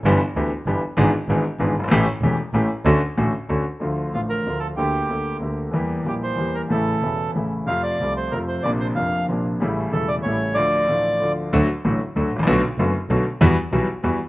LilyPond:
<<
  \new Staff \with { instrumentName = "Bandoneon" } { \time 3/4 \key d \major \tempo 4 = 188 r2. | r2. | r2. | r2. |
\key d \minor r4 f'8 bes'4 a'8 | g'2 r4 | r4 g'8 c''4 bes'8 | a'2 r4 |
f''8 d''4 c''8 bes'8 c''8 | d''8 c''8 f''4 r4 | r4 a'8 d''8 cis''4 | d''2~ d''8 r8 |
\key d \major r2. | r2. | r2. | }
  \new Staff \with { instrumentName = "Grand piano" } { \clef bass \time 3/4 \key d \major <g,, g, e b d' g'>8 r8 <d, d e b d' g'>8 r8 <g,, g, e b d' g'>8 r8 | <gis,, gis, e b d' gis'>8 r8 <gis,, gis, e b d' gis'>8 r8 <gis,, gis, e b d' gis'>8 r32 fis,,32 g,,32 gis,,32 | <a,, a, e a cis' g'>8 r8 <e,, e, e a cis' g'>8 r8 <a,, a, e a cis' g'>8 r8 | <d, d a cis' fis'>8 r8 <a,, a, d a cis' fis'>8 r8 <d, d a cis' fis'>8 r8 |
\key d \minor <d, d f a f'>4 <a,, a, d f a f'>4 <d, d f a f'>4 | <d, d a bes g'>4 <d, d a bes g'>4 <d, d a bes g'>4 | <e, e g bes g'>4 <bes,, bes, e g bes g'>4 <e, e g bes g'>4 | <a,, a, cis e a e'>4 <e,, e, cis e a e'>4 <a,, a, cis e a e'>4 |
<f, c f a f'>4 <c, c f a f'>4 <f, c f a f'>4 | <bes,, bes, c f bes d'>4 <f,, f, c f bes d'>4 <bes,, bes, c f bes d'>4 | <a,, a, cis g a e'>4 <e,, e, cis g a e'>4 <a,, a, cis g a e'>4 | <d, d f a f'>4 <a,, a, d f a f'>4 <d, d f a f'>4 |
\key d \major <d, d fis a fis'>8 r8 <a,, a, d fis a fis'>8 r8 <d, d fis a fis'>8 r32 gis,,32 a,,32 bes,,32 | <b,, b, d a b fis'>8 r8 <fis,, fis, d a b fis'>8 r8 <b,, b, d a b fis'>8 r8 | <e, e g b fis'>8 r8 <b,, b, e g b fis'>8 r8 <e, e g b fis'>8 r8 | }
  \new Staff \with { instrumentName = "Double bass" } { \clef bass \time 3/4 \key d \major g,,8 r8 d,8 r8 g,,8 r8 | gis,,8 r8 gis,,8 r8 gis,,8 g,,8 | a,,8 r8 e,,8 r8 a,,8 r8 | d,8 r8 a,,8 r8 d,8 r8 |
\key d \minor d,4 a,,4 d,4 | d,4 d,4 d,4 | e,4 bes,,4 e,4 | a,,4 e,,4 a,,4 |
f,4 c,4 f,4 | bes,,4 f,,4 bes,,4 | a,,4 e,,4 a,,4 | r2. |
\key d \major d,8 r8 a,,8 r8 d,8 a,,8 | b,,8 r8 fis,,8 r8 b,,8 r8 | e,8 r8 b,,8 r8 e,8 r8 | }
>>